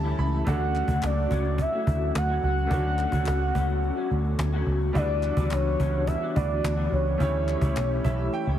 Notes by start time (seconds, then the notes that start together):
Already playing: D2 E3 G3 A3 C#4 E4 G4 C#5 A5
0.03 A3 C#4 E4, cajon slap
0.18 C#2 B5, cajon slap
0.33 cajon slap
0.45 D2 D3 F#3 A3 C#4 D4 F#4 F#5, cajon bass
0.49 F#4 A4
0.75 cajon slap, clap
0.88 D2 A3 C#4 F#4, cajon bass
1.02 C#2 D5, cajon slap, clap
1.30 C#2 A3 C#4 F#4, cajon bass
1.45 cajon slap
1.58 E5, cajon bass, cajon slap
1.72 A3 C#4 F#4
1.87 D2, cajon bass
2.01 cajon slap
2.15 D2 F#5, cajon slap, clap
2.28 A3 C#4 F#4
2.43 C#2 F#5, cajon slap
2.58 cajon slap
2.67 D2 D3 A3 C#4 D4, cajon bass
2.71 A3 B3 C#4 F#4 A4
2.99 clap
3.12 D2 A3 C#4 F#4, cajon bass
3.26 C#2, cajon slap, clap
3.55 C#2 A3 C#4 F#4, cajon bass
3.83 cajon slap
3.96 A3 C#4 F#4
4.11 D2, cajon slap
4.25 cajon slap
4.38 D2, cajon slap, clap
4.52 A3 C#4 F#4, cajon slap
4.66 C#2, cajon slap
4.82 cajon slap
4.93 D2 D3 E3 G3 B3 D4 E4 F#4 D5, cajon bass
4.98 F#4 B4
5.23 cajon slap, clap
5.37 D2 G3 D4 F#4, cajon bass
5.51 C#2 C#5, cajon slap, clap
5.80 C#2 G3 D4 F#4, cajon bass
6.07 E5, cajon bass, cajon slap
6.21 G3 D4 F#4
6.35 D2 G3 D4 E4 F#4 B4 D5, cajon bass
6.50 cajon slap
6.64 D2, cajon slap, clap
6.76 G3 D4 F#4, cajon slap
6.92 C#2 C#5, cajon slap
7.07 cajon slap
7.18 D2 E3 A3 C#4 E4 G4, cajon bass
7.22 G4 C#5
7.48 cajon slap, clap
7.61 C#2 A3 C#4 E4, cajon bass
7.76 B1, cajon slap, clap
8.04 B1 E3 A3 C#4 E4 E5, cajon bass, cajon slap
8.18 cajon slap
8.33 G5, cajon slap
8.45 C#2 A3 C#4 E4, cajon slap